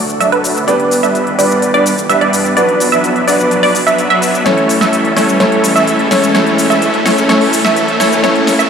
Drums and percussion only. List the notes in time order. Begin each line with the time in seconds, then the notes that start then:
0.09 closed hi-hat, shaker
0.21 closed hi-hat, shaker
0.32 closed hi-hat
0.44 open hi-hat, shaker
0.56 closed hi-hat, shaker
0.68 closed hi-hat, shaker
0.80 closed hi-hat
0.91 open hi-hat, shaker
1.03 closed hi-hat, shaker
1.15 closed hi-hat, shaker
1.27 closed hi-hat
1.39 open hi-hat, shaker
1.50 closed hi-hat, shaker
1.62 closed hi-hat, shaker
1.74 closed hi-hat
1.86 open hi-hat, shaker
1.98 closed hi-hat, shaker
2.10 closed hi-hat, shaker
2.21 closed hi-hat
2.33 open hi-hat, shaker
2.45 closed hi-hat, shaker
2.57 closed hi-hat, shaker
2.69 closed hi-hat
2.80 open hi-hat, shaker
2.92 closed hi-hat, shaker
3.04 closed hi-hat, shaker
3.16 closed hi-hat
3.28 open hi-hat, shaker
3.40 shaker
3.51 closed hi-hat, shaker
3.63 open hi-hat
3.75 open hi-hat, shaker
3.87 closed hi-hat, shaker
3.98 closed hi-hat, shaker
4.10 closed hi-hat
4.22 open hi-hat, shaker
4.34 closed hi-hat, shaker
4.46 snare, closed hi-hat, shaker
4.58 closed hi-hat
4.69 open hi-hat, shaker
4.81 snare, shaker
4.93 closed hi-hat, shaker
5.05 closed hi-hat
5.17 snare, open hi-hat, shaker
5.28 closed hi-hat, shaker
5.40 snare, closed hi-hat, shaker
5.52 closed hi-hat
5.64 open hi-hat, shaker
5.76 closed hi-hat, shaker
5.87 closed hi-hat, shaker
5.99 closed hi-hat
6.11 snare, open hi-hat, shaker
6.24 shaker
6.35 snare, closed hi-hat, shaker
6.46 closed hi-hat
6.58 open hi-hat, shaker
6.70 closed hi-hat, shaker
6.82 closed hi-hat, shaker
6.94 closed hi-hat
7.06 snare, open hi-hat, shaker
7.17 closed hi-hat, shaker
7.29 snare, closed hi-hat, shaker
7.41 open hi-hat
7.53 open hi-hat, shaker
7.65 snare, shaker
7.76 closed hi-hat, shaker
7.88 closed hi-hat
8.00 snare, open hi-hat, shaker
8.12 closed hi-hat, shaker
8.24 snare, closed hi-hat, shaker
8.35 closed hi-hat
8.47 snare, open hi-hat, shaker
8.59 closed hi-hat, shaker